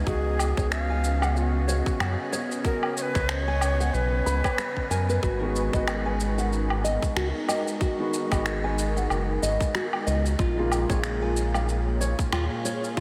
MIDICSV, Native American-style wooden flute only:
0, 0, Header, 1, 2, 480
1, 0, Start_track
1, 0, Tempo, 645161
1, 51, Time_signature, 4, 2, 24, 8
1, 9673, End_track
2, 0, Start_track
2, 0, Title_t, "Native American-style wooden flute"
2, 0, Program_c, 0, 77
2, 49, Note_on_c, 0, 68, 96
2, 532, Note_on_c, 0, 77, 86
2, 543, Note_off_c, 0, 68, 0
2, 1015, Note_on_c, 0, 66, 77
2, 1026, Note_off_c, 0, 77, 0
2, 1733, Note_off_c, 0, 66, 0
2, 1971, Note_on_c, 0, 70, 91
2, 2194, Note_off_c, 0, 70, 0
2, 2211, Note_on_c, 0, 73, 85
2, 2246, Note_on_c, 0, 71, 93
2, 2253, Note_off_c, 0, 73, 0
2, 2451, Note_on_c, 0, 72, 105
2, 2462, Note_off_c, 0, 71, 0
2, 2548, Note_off_c, 0, 72, 0
2, 2548, Note_on_c, 0, 73, 105
2, 2928, Note_on_c, 0, 71, 96
2, 2939, Note_off_c, 0, 73, 0
2, 3644, Note_off_c, 0, 71, 0
2, 3648, Note_on_c, 0, 70, 67
2, 3873, Note_off_c, 0, 70, 0
2, 9673, End_track
0, 0, End_of_file